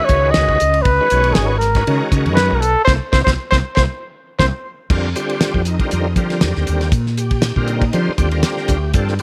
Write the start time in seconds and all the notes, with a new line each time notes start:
Already playing: D#3 G#3 C#4 F#4 B4
0.05 C#5, hi-hat pedal, ride
0.09 C#2, kick
0.31 D#5, snare, ride
0.36 C#2
0.49 kick
0.60 C#2, hi-hat pedal, ride
0.74 ride
0.82 C#2 B4, kick, ride
1.00 D#3 G#3 C#4 F#4 B4
1.10 B1 D#3 G#3 C#4 F#4 C#5, hi-hat pedal, ride
1.24 ride
1.34 G#1 G#4, snare, ride
1.47 B4
1.58 A#4, snare, hi-hat pedal, ride
1.75 D#3 G#3 C#4 F#4 B4, kick, snare, ride
1.87 C#3 D#3 G#3 C#4 F#4 A#4, ride
2.12 C#3, kick, hi-hat pedal, ride
2.26 F#2, ride
2.35 B4, snare, ride
2.52 B1 A#4
2.61 A4, hi-hat pedal, ride
2.85 C2 A#3 C4 E4 C5, kick, snare
3.12 C2 A#3 C4 E4 C5, kick, snare
3.25 C2 A#3 C4 E4 C5, kick, snare
3.51 C2 A#3 C4 E4 C5, kick, snare
3.75 C2 A#3 C4 E4 C5, kick, snare
4.39 C2 A#3 C4 E4 C5, kick, snare
4.90 F2 D3 G3 C4 F4 A#4, kick, crash
5.16 D3 G3 C4 F4 G4, hi-hat pedal, ride
5.29 ride
5.41 snare, hi-hat pedal, ride
5.54 F2, kick
5.65 D#4, hi-hat pedal, ride
5.80 D3 G3 C4 F4 A#4, kick, ride
5.91 F2, hi-hat pedal, ride
6.16 D3 F3 G3 C4 F4 A#4, kick, hi-hat pedal, ride
6.30 snare, ride
6.41 F2 G4, snare, hi-hat pedal, ride
6.55 D#2, snare
6.67 D#2, hi-hat pedal, ride
6.81 snare, ride
6.92 A#2, kick, hi-hat pedal, ride
7.06 snare
7.17 G4, hi-hat pedal, ride
7.31 kick, ride
7.42 snare, hi-hat pedal, ride
7.56 A#2 D3 G3 C4 F4 A#4, kick
7.67 D#4, hi-hat pedal, ride
7.82 kick, ride
7.93 D3 F3 G3 C4 F4 C5, hi-hat pedal, ride
8.08 muted fretless electric bass stroke
8.18 D#2 D3 G3 C4 F4 G4, kick, hi-hat pedal, ride
8.31 D3 G3 C4 F4 A#4, ride
8.43 G4, snare, hi-hat pedal, ride
8.57 snare
8.68 D2, kick, hi-hat pedal, ride
8.93 G2 D3 G3 C4 F4 A4, kick, hi-hat pedal, ride
9.08 snare
9.19 hi-hat pedal, ride